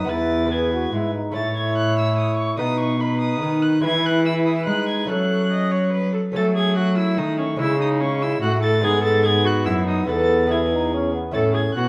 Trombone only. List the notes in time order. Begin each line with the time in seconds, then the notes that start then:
Already playing: D#4
0.10 E4
0.52 G#4
0.73 F#4
0.93 E4
1.15 D#4
1.36 E4
2.59 D#4
2.99 D#4
3.83 E4
4.24 E4
4.66 D#4
5.09 C#4
6.36 A3
6.78 A3
7.60 G#3
8.01 G#3
8.42 A3
8.84 B3
9.26 B3
10.09 B3
10.51 E4
10.73 D#4
10.94 C#4
11.14 B3
11.34 C#4
11.76 B3